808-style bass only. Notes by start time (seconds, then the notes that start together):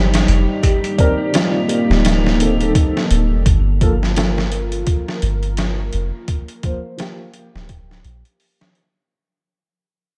Already playing: G1
0.28 F1
1.90 D1
3.11 D1
3.31 F1
3.46 G1
5.23 G1
5.94 F1
7.55 D1
8.05 A#1